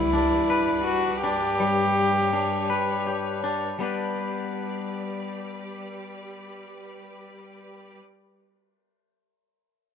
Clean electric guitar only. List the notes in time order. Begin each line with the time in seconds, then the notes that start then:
Already playing: G3
0.13 D4
0.50 B4
1.24 D4
1.60 G3
2.33 D4
2.70 B4
3.07 G4
3.44 D4
3.79 G3 B3 D4 G4
3.83 B4